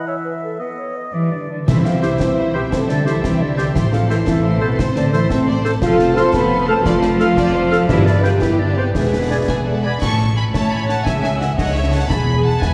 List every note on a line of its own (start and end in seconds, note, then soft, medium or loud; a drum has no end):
0.00 0.59 E3 medium
0.07 0.15 C#5 medium
0.07 0.63 E5 soft
0.07 0.59 E5 soft
0.25 0.33 B4 medium
0.44 0.60 A4 soft
0.60 1.13 B3 medium
0.60 0.68 B4 soft
0.60 1.15 D#5 soft
0.60 0.90 F#5 soft
0.78 0.98 C#5 soft
0.96 1.15 D#5 soft
1.13 1.30 E3 medium
1.13 1.50 G3 soft
1.13 1.31 E4 medium
1.13 1.50 B4 soft
1.13 1.50 D5 soft
1.13 1.33 E5 medium
1.31 1.49 D3 soft
1.31 1.48 D4 medium
1.31 1.50 D5 soft
1.50 1.67 D3 medium
1.50 1.58 D4 medium
1.50 1.57 D5 soft
1.67 2.13 C2 medium
1.67 2.16 C3 medium
1.67 1.85 E3 medium
1.67 1.84 E4 medium
1.67 1.85 E4 medium
1.67 1.83 C5 medium
1.67 2.68 C5 medium
1.67 1.83 E5 medium
1.67 1.86 E5 medium
1.67 concert bass drum medium
1.67 snare medium
1.67 crash soft
1.84 2.02 F3 medium
1.84 2.02 C4 soft
1.84 2.02 F4 medium
1.84 2.02 E5 soft
1.84 2.04 F5 medium
1.84 2.02 G5 soft
1.84 snare soft
2.01 2.18 E3 medium
2.01 2.20 E4 soft
2.01 2.19 E4 medium
2.01 2.08 G4 medium
2.01 2.20 C5 soft
2.01 2.09 C5 medium
2.01 2.19 E5 soft
2.01 2.20 E5 medium
2.01 snare soft
2.18 2.65 C2 medium
2.18 2.53 E3 medium
2.18 2.37 C4 medium
2.18 2.54 E4 medium
2.18 2.53 E5 medium
2.18 2.37 E5 medium
2.18 2.36 G5 medium
2.18 concert bass drum medium
2.18 snare medium
2.37 2.54 E4 soft
2.37 2.54 C5 soft
2.37 2.53 E5 soft
2.54 2.72 B2 medium
2.54 2.72 B3 medium
2.54 2.72 C4 soft
2.54 2.61 G4 medium
2.54 2.60 B4 medium
2.54 2.60 C5 medium
2.54 2.72 E5 soft
2.54 2.71 G5 medium
2.71 3.18 C2 medium
2.71 2.78 C3 medium
2.71 2.89 C4 medium
2.71 2.89 E4 medium
2.71 3.22 A4 medium
2.71 2.77 C5 medium
2.71 2.89 C5 medium
2.71 2.89 E5 medium
2.71 concert bass drum medium
2.71 snare medium
2.87 3.05 D3 medium
2.87 3.06 C4 medium
2.87 3.07 D4 medium
2.87 3.06 D5 medium
2.87 3.06 E5 soft
2.87 3.06 G5 medium
2.87 snare soft
3.05 3.21 E3 medium
3.05 3.22 E4 soft
3.05 3.24 E4 medium
3.05 3.12 G4 medium
3.05 3.12 C5 medium
3.05 3.22 C5 soft
3.05 3.22 E5 medium
3.05 3.22 E5 soft
3.05 snare soft
3.22 3.69 C2 medium
3.22 3.40 E3 medium
3.22 3.41 C4 medium
3.22 3.41 E4 medium
3.22 4.27 G4 medium
3.22 3.40 E5 medium
3.22 3.41 E5 medium
3.22 3.40 G5 medium
3.22 concert bass drum medium
3.22 snare medium
3.39 3.56 D3 medium
3.39 3.58 D4 medium
3.39 3.58 E4 medium
3.39 3.58 C5 soft
3.39 3.55 D5 medium
3.39 3.57 E5 soft
3.56 3.64 D3 medium
3.56 3.75 C4 medium
3.56 3.66 D4 medium
3.56 3.64 G4 medium
3.56 3.64 C5 medium
3.56 3.74 D5 medium
3.56 3.75 E5 medium
3.56 3.75 G5 medium
3.56 snare medium
3.74 4.21 A1 medium
3.74 3.81 E3 medium
3.74 3.91 A3 medium
3.74 3.93 E4 medium
3.74 3.92 C5 medium
3.74 3.80 E5 medium
3.74 3.91 C6 medium
3.74 concert bass drum medium
3.74 snare medium
3.92 4.09 F3 medium
3.92 4.10 C4 medium
3.92 4.10 F4 medium
3.92 4.10 A4 medium
3.92 4.09 F5 medium
3.92 4.10 A5 medium
3.92 snare soft
4.09 4.25 E3 medium
4.09 4.27 A3 medium
4.09 4.26 E4 medium
4.09 4.16 A4 medium
4.09 4.27 C5 medium
4.09 4.17 C5 medium
4.09 4.15 E5 medium
4.09 4.27 C6 soft
4.09 snare soft
4.26 4.73 A1 medium
4.26 4.61 E3 medium
4.26 4.44 C4 medium
4.26 4.61 E4 medium
4.26 4.44 A4 medium
4.26 4.78 A4 medium
4.26 4.64 E5 medium
4.26 4.44 A5 medium
4.26 concert bass drum medium
4.26 snare medium
4.44 4.60 A3 medium
4.44 4.60 C5 medium
4.44 4.60 C6 medium
4.61 4.78 B2 medium
4.61 4.71 B3 medium
4.61 4.78 C4 medium
4.61 4.78 A4 medium
4.61 4.67 A4 medium
4.61 4.80 B4 medium
4.61 4.67 C5 medium
4.61 4.79 A5 medium
4.78 5.24 A1 medium
4.78 4.96 C3 medium
4.78 4.96 A3 medium
4.78 4.97 C4 medium
4.78 5.30 C5 medium
4.78 4.96 C5 medium
4.78 4.95 C5 medium
4.78 4.95 C6 medium
4.78 concert bass drum medium
4.78 snare medium
4.95 5.13 D3 medium
4.95 5.13 C4 medium
4.95 5.14 D4 medium
4.95 5.13 A4 medium
4.95 5.13 D5 medium
4.95 5.13 A5 medium
4.95 snare medium
5.13 5.31 E3 medium
5.13 5.29 A3 medium
5.13 5.31 E4 medium
5.13 5.19 A4 medium
5.13 5.29 C5 medium
5.13 5.20 C5 medium
5.13 5.31 E5 medium
5.13 5.29 C6 medium
5.13 snare medium
5.30 5.76 A1 medium
5.30 5.48 C3 medium
5.30 5.48 C4 medium
5.30 5.48 A4 medium
5.30 5.48 C5 medium
5.30 5.37 E5 medium
5.30 5.47 A5 medium
5.30 concert bass drum medium
5.30 snare medium
5.48 5.65 A3 medium
5.48 5.65 C5 medium
5.48 5.65 D5 medium
5.48 5.65 C6 medium
5.63 5.83 C4 medium
5.63 5.71 A4 medium
5.63 5.82 A4 medium
5.63 5.70 C5 medium
5.63 5.71 C5 medium
5.63 5.82 A5 medium
5.63 snare medium
5.82 6.27 F1 medium
5.82 6.14 F3 loud
5.82 5.99 A3 medium
5.82 6.14 F4 loud
5.82 6.83 A4 medium
5.82 5.98 A4 medium
5.82 6.14 F5 loud
5.82 5.98 C6 medium
5.82 concert bass drum medium
5.82 snare medium
5.82 crash soft
5.98 6.17 C4 medium
5.98 6.17 C5 medium
5.98 6.16 A5 medium
5.98 snare medium
6.15 6.34 A3 medium
6.15 6.23 C4 medium
6.15 6.23 A4 medium
6.15 6.34 A4 medium
6.15 6.33 C5 loud
6.15 6.22 F5 medium
6.15 6.33 C6 medium
6.15 snare medium
6.32 6.79 F1 medium
6.32 6.67 B3 medium
6.32 6.51 C4 medium
6.32 6.67 B4 loud
6.32 6.51 C5 medium
6.32 6.50 A5 medium
6.32 6.67 B5 loud
6.32 concert bass drum medium
6.32 snare medium
6.50 6.67 A3 medium
6.50 6.67 A4 medium
6.50 6.66 C6 medium
6.66 6.85 A3 loud
6.66 6.85 C4 medium
6.66 6.85 A4 loud
6.66 6.74 A4 medium
6.66 6.85 C5 medium
6.66 6.75 F5 medium
6.66 6.84 A5 medium
6.66 6.88 A5 medium
6.83 7.31 F1 medium
6.83 7.87 F3 loud
6.83 7.03 A3 medium
6.83 7.88 F4 loud
6.83 7.03 A4 medium
6.83 6.92 D5 loud
6.83 7.88 F5 loud
6.83 7.02 C6 medium
6.83 concert bass drum medium
6.83 snare medium
7.01 7.20 C4 medium
7.01 7.09 C5 medium
7.01 7.20 C5 medium
7.01 7.19 A5 medium
7.01 snare medium
7.19 7.35 A3 medium
7.19 7.25 A4 medium
7.19 7.35 A4 medium
7.19 7.28 A4 medium
7.19 7.27 F5 medium
7.19 7.35 C6 medium
7.19 snare medium
7.35 7.82 F1 medium
7.35 7.54 C4 medium
7.35 7.54 C5 medium
7.35 7.54 D5 loud
7.35 7.53 A5 medium
7.35 concert bass drum medium
7.35 snare medium
7.52 7.71 A3 medium
7.52 7.71 A4 medium
7.52 7.71 C5 medium
7.52 7.71 C6 medium
7.70 7.88 C4 medium
7.70 7.78 A4 medium
7.70 7.89 A4 medium
7.70 7.88 C5 medium
7.70 7.78 F5 medium
7.70 7.89 A5 medium
7.70 snare medium
7.86 8.35 G1 medium
7.86 8.38 G2 medium
7.86 8.06 E3 loud
7.86 8.04 D4 medium
7.86 8.06 E4 loud
7.86 8.04 G4 medium
7.86 8.04 B4 medium
7.86 8.40 B4 medium
7.86 8.07 E5 loud
7.86 concert bass drum medium
7.86 snare medium
8.05 8.23 D3 medium
8.05 8.23 B3 medium
8.05 8.23 D4 loud
8.05 8.23 B4 medium
8.05 8.25 D5 medium
8.05 8.24 D5 medium
8.05 snare medium
8.23 8.41 F3 medium
8.23 8.41 D4 medium
8.23 8.41 F4 loud
8.23 8.41 G4 medium
8.23 8.30 B4 medium
8.23 8.42 B4 medium
8.23 8.43 F5 medium
8.23 8.30 G5 medium
8.23 snare medium
8.41 8.88 G1 medium
8.41 8.59 E3 medium
8.41 8.59 B3 medium
8.41 8.59 E4 medium
8.41 8.95 G4 medium
8.41 8.59 B4 medium
8.41 8.59 D5 medium
8.41 8.61 E5 medium
8.41 concert bass drum medium
8.41 snare medium
8.59 8.77 D3 medium
8.59 8.76 D4 medium
8.59 8.77 D4 medium
8.59 8.75 G4 medium
8.59 8.75 B4 medium
8.59 8.76 D5 medium
8.75 8.94 C3 medium
8.75 8.95 B3 medium
8.75 8.94 C4 medium
8.75 8.83 B4 medium
8.75 8.95 B4 medium
8.75 8.83 C5 medium
8.75 8.94 D5 medium
8.75 8.84 G5 medium
8.94 9.42 E1 medium
8.94 9.83 B2 medium
8.94 9.12 G#3 medium
8.94 9.84 B3 medium
8.94 9.44 G#4 medium
8.94 9.12 G#4 medium
8.94 9.83 B4 medium
8.94 9.12 E5 medium
8.94 concert bass drum medium
8.94 snare medium
9.14 9.31 B3 medium
9.14 9.31 B4 medium
9.14 9.31 D5 medium
9.30 9.48 G#3 soft
9.30 9.49 G#4 soft
9.30 9.37 D5 medium
9.30 9.49 E5 soft
9.30 9.37 G#5 medium
9.48 9.96 E1 medium
9.48 9.66 B3 medium
9.48 9.65 G#4 medium
9.48 9.66 B4 medium
9.48 9.66 D5 soft
9.48 9.55 E5 medium
9.48 9.56 G#5 medium
9.48 concert bass drum medium
9.48 snare medium
9.65 9.83 G#3 soft
9.65 9.82 G#4 soft
9.65 9.84 A4 medium
9.65 9.84 D5 medium
9.65 9.83 E5 soft
9.65 9.84 F#5 medium
9.83 10.02 B3 soft
9.83 10.01 G#4 medium
9.83 10.02 B4 soft
9.83 10.02 D5 medium
9.83 9.92 D5 medium
9.83 9.90 G#5 medium
9.83 9.92 G#5 medium
9.83 10.02 B5 medium
10.02 10.48 A1 medium
10.02 10.48 A2 medium
10.02 10.36 A5 medium
10.02 10.36 C#6 medium
10.02 concert bass drum medium
10.02 snare medium
10.02 crash medium
10.36 10.43 G#5 medium
10.36 10.44 B5 medium
10.53 11.00 A1 medium
10.53 11.00 A2 medium
10.53 11.03 C#5 medium
10.53 10.70 E5 medium
10.53 10.71 A5 medium
10.53 concert bass drum medium
10.53 snare medium
10.70 10.88 G#5 medium
10.70 10.89 B5 medium
10.88 11.06 F#5 medium
10.88 11.05 A5 medium
10.88 snare soft
11.04 11.52 C#2 medium
11.04 11.52 C#3 medium
11.04 11.22 E5 medium
11.04 11.58 E5 medium
11.04 11.12 G#5 medium
11.04 concert bass drum medium
11.04 snare medium
11.22 11.30 E5 medium
11.22 11.40 G#5 medium
11.22 snare medium
11.39 11.47 D#5 medium
11.39 11.57 F#5 medium
11.39 snare medium
11.56 12.04 C#2 medium
11.56 12.03 C#3 medium
11.56 12.09 C#5 medium
11.56 11.74 D#5 medium
11.56 11.75 F#5 loud
11.56 concert bass drum medium
11.56 snare medium
11.75 11.92 C#5 medium
11.75 11.93 E5 medium
11.92 12.09 F#5 medium
11.92 12.10 A5 medium
12.09 12.56 E1 medium
12.09 12.56 E2 medium
12.09 12.60 G#4 medium
12.09 12.43 G#5 medium
12.09 12.44 B5 medium
12.09 concert bass drum medium
12.09 snare medium
12.44 12.62 F#5 medium
12.44 12.61 A5 medium
12.61 12.74 E1 medium
12.61 12.74 E2 medium
12.61 12.74 B4 medium
12.61 12.74 E5 medium
12.61 12.74 G#5 loud
12.61 concert bass drum medium
12.61 snare medium